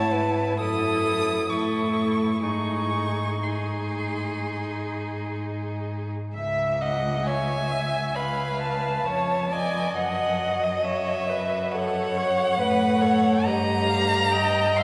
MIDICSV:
0, 0, Header, 1, 5, 480
1, 0, Start_track
1, 0, Key_signature, 4, "minor"
1, 0, Tempo, 927357
1, 1258, Time_signature, 4, 2, 24, 8
1, 1258, Tempo, 980392
1, 3178, Tempo, 902256
1, 4618, Tempo, 878477
1, 7772, End_track
2, 0, Start_track
2, 0, Title_t, "Violin"
2, 0, Program_c, 0, 40
2, 0, Note_on_c, 0, 81, 85
2, 303, Note_off_c, 0, 81, 0
2, 309, Note_on_c, 0, 87, 98
2, 774, Note_on_c, 0, 85, 72
2, 781, Note_off_c, 0, 87, 0
2, 1254, Note_off_c, 0, 85, 0
2, 1258, Note_on_c, 0, 85, 67
2, 1747, Note_on_c, 0, 84, 51
2, 1755, Note_off_c, 0, 85, 0
2, 2703, Note_off_c, 0, 84, 0
2, 3655, Note_on_c, 0, 80, 89
2, 4134, Note_on_c, 0, 83, 73
2, 4142, Note_off_c, 0, 80, 0
2, 4377, Note_off_c, 0, 83, 0
2, 4384, Note_on_c, 0, 81, 72
2, 4874, Note_on_c, 0, 80, 76
2, 4882, Note_off_c, 0, 81, 0
2, 5108, Note_off_c, 0, 80, 0
2, 5113, Note_on_c, 0, 78, 85
2, 5480, Note_on_c, 0, 75, 74
2, 5488, Note_off_c, 0, 78, 0
2, 5590, Note_on_c, 0, 76, 84
2, 5599, Note_off_c, 0, 75, 0
2, 6071, Note_on_c, 0, 78, 90
2, 6079, Note_off_c, 0, 76, 0
2, 7012, Note_on_c, 0, 82, 108
2, 7020, Note_off_c, 0, 78, 0
2, 7735, Note_on_c, 0, 84, 87
2, 7744, Note_off_c, 0, 82, 0
2, 7772, Note_off_c, 0, 84, 0
2, 7772, End_track
3, 0, Start_track
3, 0, Title_t, "Violin"
3, 0, Program_c, 1, 40
3, 0, Note_on_c, 1, 73, 59
3, 67, Note_on_c, 1, 71, 54
3, 75, Note_off_c, 1, 73, 0
3, 307, Note_off_c, 1, 71, 0
3, 310, Note_on_c, 1, 69, 65
3, 765, Note_off_c, 1, 69, 0
3, 774, Note_on_c, 1, 69, 58
3, 1248, Note_off_c, 1, 69, 0
3, 1255, Note_on_c, 1, 68, 52
3, 1736, Note_off_c, 1, 68, 0
3, 1754, Note_on_c, 1, 68, 50
3, 3064, Note_off_c, 1, 68, 0
3, 3176, Note_on_c, 1, 76, 57
3, 3423, Note_on_c, 1, 78, 54
3, 3431, Note_off_c, 1, 76, 0
3, 3669, Note_on_c, 1, 76, 55
3, 3677, Note_off_c, 1, 78, 0
3, 4139, Note_on_c, 1, 77, 59
3, 4147, Note_off_c, 1, 76, 0
3, 4616, Note_on_c, 1, 73, 53
3, 4624, Note_off_c, 1, 77, 0
3, 4857, Note_off_c, 1, 73, 0
3, 4861, Note_on_c, 1, 74, 64
3, 5099, Note_on_c, 1, 75, 57
3, 5108, Note_off_c, 1, 74, 0
3, 6067, Note_on_c, 1, 73, 67
3, 6075, Note_off_c, 1, 75, 0
3, 6552, Note_on_c, 1, 71, 67
3, 6561, Note_off_c, 1, 73, 0
3, 6778, Note_on_c, 1, 73, 67
3, 6787, Note_off_c, 1, 71, 0
3, 7010, Note_off_c, 1, 73, 0
3, 7014, Note_on_c, 1, 75, 62
3, 7249, Note_on_c, 1, 77, 70
3, 7257, Note_off_c, 1, 75, 0
3, 7490, Note_on_c, 1, 79, 71
3, 7498, Note_off_c, 1, 77, 0
3, 7743, Note_on_c, 1, 77, 72
3, 7751, Note_off_c, 1, 79, 0
3, 7772, Note_off_c, 1, 77, 0
3, 7772, End_track
4, 0, Start_track
4, 0, Title_t, "Viola"
4, 0, Program_c, 2, 41
4, 0, Note_on_c, 2, 64, 56
4, 299, Note_off_c, 2, 64, 0
4, 311, Note_on_c, 2, 64, 63
4, 765, Note_off_c, 2, 64, 0
4, 773, Note_on_c, 2, 64, 55
4, 1262, Note_on_c, 2, 63, 50
4, 1269, Note_off_c, 2, 64, 0
4, 1748, Note_off_c, 2, 63, 0
4, 1751, Note_on_c, 2, 63, 46
4, 3062, Note_off_c, 2, 63, 0
4, 3182, Note_on_c, 2, 76, 66
4, 3424, Note_on_c, 2, 75, 62
4, 3432, Note_off_c, 2, 76, 0
4, 3665, Note_on_c, 2, 73, 61
4, 3673, Note_off_c, 2, 75, 0
4, 3901, Note_on_c, 2, 76, 55
4, 3909, Note_off_c, 2, 73, 0
4, 4142, Note_on_c, 2, 71, 66
4, 4150, Note_off_c, 2, 76, 0
4, 4624, Note_on_c, 2, 73, 67
4, 4632, Note_off_c, 2, 71, 0
4, 4869, Note_on_c, 2, 75, 66
4, 4877, Note_off_c, 2, 73, 0
4, 5587, Note_off_c, 2, 75, 0
4, 5593, Note_on_c, 2, 73, 64
4, 5839, Note_on_c, 2, 71, 63
4, 5847, Note_off_c, 2, 73, 0
4, 6083, Note_on_c, 2, 69, 69
4, 6091, Note_off_c, 2, 71, 0
4, 6322, Note_on_c, 2, 73, 77
4, 6330, Note_off_c, 2, 69, 0
4, 6551, Note_off_c, 2, 73, 0
4, 6557, Note_on_c, 2, 71, 66
4, 6783, Note_on_c, 2, 69, 66
4, 6791, Note_off_c, 2, 71, 0
4, 7024, Note_on_c, 2, 67, 71
4, 7032, Note_off_c, 2, 69, 0
4, 7500, Note_on_c, 2, 75, 77
4, 7508, Note_off_c, 2, 67, 0
4, 7751, Note_on_c, 2, 76, 83
4, 7759, Note_off_c, 2, 75, 0
4, 7772, Note_off_c, 2, 76, 0
4, 7772, End_track
5, 0, Start_track
5, 0, Title_t, "Cello"
5, 0, Program_c, 3, 42
5, 0, Note_on_c, 3, 44, 53
5, 303, Note_on_c, 3, 42, 55
5, 310, Note_off_c, 3, 44, 0
5, 770, Note_on_c, 3, 45, 51
5, 777, Note_off_c, 3, 42, 0
5, 1252, Note_off_c, 3, 45, 0
5, 1255, Note_on_c, 3, 44, 55
5, 3059, Note_off_c, 3, 44, 0
5, 3176, Note_on_c, 3, 37, 60
5, 4116, Note_off_c, 3, 37, 0
5, 4136, Note_on_c, 3, 37, 50
5, 4608, Note_off_c, 3, 37, 0
5, 4616, Note_on_c, 3, 41, 54
5, 5091, Note_off_c, 3, 41, 0
5, 5100, Note_on_c, 3, 42, 61
5, 6544, Note_on_c, 3, 45, 62
5, 6552, Note_off_c, 3, 42, 0
5, 7000, Note_off_c, 3, 45, 0
5, 7004, Note_on_c, 3, 43, 68
5, 7772, Note_off_c, 3, 43, 0
5, 7772, End_track
0, 0, End_of_file